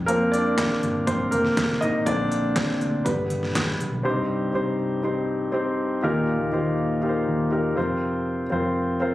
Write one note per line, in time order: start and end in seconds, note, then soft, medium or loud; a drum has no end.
0.00 0.66 F2 loud
0.06 0.41 F3 medium
0.06 0.31 A#3 medium
0.06 0.41 C4 medium
0.06 0.33 A#4 medium
0.06 closed hi-hat loud
0.32 1.04 D4 medium
0.32 1.09 D5 medium
0.32 closed hi-hat medium
0.58 kick loud
0.58 snare loud
0.58 clap medium
0.58 closed hi-hat medium
0.83 1.29 G1 medium
0.83 closed hi-hat soft
0.83 floor tom medium
1.07 1.31 C4 medium
1.07 1.33 C5 medium
1.07 kick medium
1.07 closed hi-hat medium
1.31 1.55 F1 medium
1.31 1.78 A#3 medium
1.31 1.83 A#4 medium
1.31 closed hi-hat medium
1.31 floor tom medium
1.45 snare soft
1.57 1.80 F1 medium
1.57 kick loud
1.57 snare loud
1.57 clap medium
1.57 closed hi-hat medium
1.81 2.05 G#1 medium
1.81 2.05 D#4 medium
1.81 2.07 D#5 medium
1.81 closed hi-hat medium
1.81 floor tom medium
2.06 2.65 A#1 medium
2.06 2.39 D3 medium
2.06 2.40 A#3 soft
2.06 2.40 C4 medium
2.06 2.53 D4 medium
2.06 2.57 D5 loud
2.06 kick medium
2.06 closed hi-hat loud
2.32 closed hi-hat medium
2.56 3.03 C4 medium
2.56 3.07 C5 medium
2.56 kick loud
2.56 snare loud
2.56 clap medium
2.56 closed hi-hat medium
2.81 3.04 D2 medium
2.81 closed hi-hat medium
2.81 floor tom medium
3.05 3.76 G1 medium
3.05 3.38 D3 soft
3.05 3.39 G3 soft
3.05 3.52 B3 medium
3.05 3.51 B4 medium
3.05 kick medium
3.05 closed hi-hat medium
3.30 closed hi-hat medium
3.30 floor tom medium
3.43 snare soft
3.55 kick loud
3.55 snare loud
3.55 clap medium
3.55 closed hi-hat medium
3.80 4.03 B1 medium
3.80 closed hi-hat medium
3.80 floor tom medium
3.93 floor tom medium
4.03 4.51 C2 medium
4.03 4.75 G2 medium
4.03 4.48 C4 medium
4.03 4.10 D4 medium
4.03 4.49 G4 medium
4.03 4.49 C5 medium
4.10 4.52 D#4 medium
4.53 5.75 C2 medium
4.53 4.98 C4 medium
4.53 4.99 D#4 medium
4.53 4.99 G4 medium
4.53 4.99 C5 medium
5.02 5.48 C4 medium
5.02 5.48 D#4 medium
5.02 5.48 G4 medium
5.02 5.49 C5 medium
5.52 5.97 C4 medium
5.52 5.98 D#4 medium
5.52 5.98 G4 medium
5.52 5.98 C5 medium
6.02 6.38 D#2 medium
6.02 6.74 A#2 medium
6.02 6.47 D#4 medium
6.02 6.48 F4 medium
6.02 6.48 G4 medium
6.02 6.48 A#4 medium
6.41 6.52 D#2 medium
6.51 7.24 D#2 medium
6.51 6.97 D#4 medium
6.51 6.97 F4 medium
6.51 6.97 G4 medium
6.51 6.98 C5 medium
7.02 7.47 D#4 medium
7.02 7.47 F4 medium
7.02 7.47 G4 medium
7.02 7.09 A#4 medium
7.09 7.50 C5 medium
7.28 7.74 D#2 medium
7.51 7.76 D#4 medium
7.51 7.75 F4 medium
7.51 7.77 G4 medium
7.51 7.75 A#4 medium
7.76 8.48 F2 medium
7.76 8.47 C3 medium
7.76 8.43 C4 medium
7.76 8.43 F4 medium
7.76 8.43 A#4 medium
7.76 8.44 C5 medium
8.50 9.14 F2 medium
8.50 8.95 C4 medium
8.50 8.96 F4 medium
8.50 8.96 A#4 medium
8.50 8.96 C5 medium
9.00 9.14 C4 medium
9.00 9.14 F4 medium
9.00 9.14 A#4 medium
9.00 9.14 C5 medium